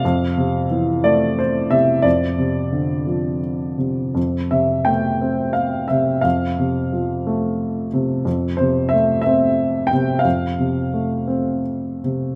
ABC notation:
X:1
M:6/8
L:1/8
Q:3/8=59
K:F
V:1 name="Upright piano"
f2 z d c e | d4 z2 | z e g2 f e | f4- f z |
z c e e2 g | f4 z2 |]
V:2 name="Upright piano" clef=bass
F,, C, E, A,2 C, | F,, C, D, F,2 C, | F,, C, A, C2 C, | F,, C, F, A,2 C, |
F,, C, A, C2 C, | F,, C, A, C2 C, |]